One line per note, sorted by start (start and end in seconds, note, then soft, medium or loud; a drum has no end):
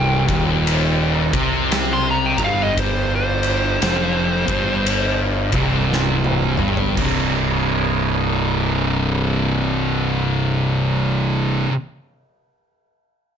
0.00 0.25 C1 medium
0.00 0.27 C2 loud
0.00 0.65 G5 loud
0.28 1.30 D#1 loud
0.28 1.32 D#2 loud
0.28 kick loud
0.28 ride medium
0.67 ride medium
1.33 2.34 C2 medium
1.33 2.37 C3 loud
1.33 kick loud
1.33 ride medium
1.72 snare loud
1.72 ride loud
1.93 2.07 C6 medium
2.11 2.39 A#5 medium
2.26 2.36 G5 medium
2.38 3.79 G1 medium
2.38 3.81 G2 loud
2.38 kick loud
2.38 ride medium
2.45 2.63 F5 medium
2.63 2.79 D#5 medium
2.77 3.12 C5 medium
2.77 kick loud
2.77 ride loud
3.15 5.20 C5 medium
3.43 ride medium
3.82 4.44 F1 medium
3.82 4.46 F2 medium
3.82 snare loud
3.82 ride loud
4.48 5.50 G1 medium
4.48 5.51 G2 medium
4.48 kick loud
4.48 ride medium
4.86 ride medium
5.52 6.54 C1 medium
5.52 6.57 C2 loud
5.52 kick loud
5.52 ride medium
5.93 snare medium
6.24 high tom medium
6.57 6.95 G1 medium
6.57 6.96 G2 loud
6.57 mid tom medium
6.77 floor tom medium
6.97 11.65 C1 medium
6.97 11.68 C2 medium
6.97 11.70 G2 medium
6.97 11.72 C3 medium
6.97 kick loud
6.97 crash medium